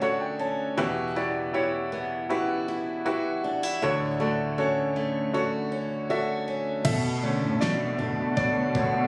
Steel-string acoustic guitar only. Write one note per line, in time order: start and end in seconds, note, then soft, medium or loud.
0.00 0.77 D3 medium
0.00 0.86 A3 soft
0.00 0.38 C#4 soft
0.00 0.78 F#4 medium
0.39 0.85 C#4 soft
0.77 3.82 E3 medium
0.77 2.30 F#4 medium
1.16 1.91 B3 soft
1.54 2.67 E4 soft
1.92 3.90 B3 soft
2.30 3.05 F#4 soft
2.68 3.44 E4 soft
3.06 3.82 F#4 medium
3.44 3.63 D4 soft
3.63 3.90 E4 soft
3.82 6.84 D3 medium
3.82 5.34 F#4 medium
4.20 4.96 A3 soft
4.58 5.71 C#4 soft
4.96 7.61 A3 soft
5.34 6.10 F#4 soft
5.72 6.46 C#4 soft
6.10 8.74 F#4 medium
6.48 6.93 C#4 soft
6.85 9.07 B2 medium
7.23 7.98 D4 medium
7.61 9.07 A3 medium
7.99 9.07 D4 medium
8.37 9.07 F#3 medium
8.75 9.07 F#4 medium